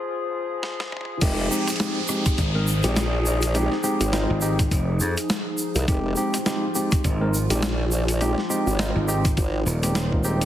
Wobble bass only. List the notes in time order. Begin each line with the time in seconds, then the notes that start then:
1.22 F1
2.84 A#1
4.00 G#1
5.75 C2
5.88 F1
7.50 A#1
8.67 G#1
9.37 G#1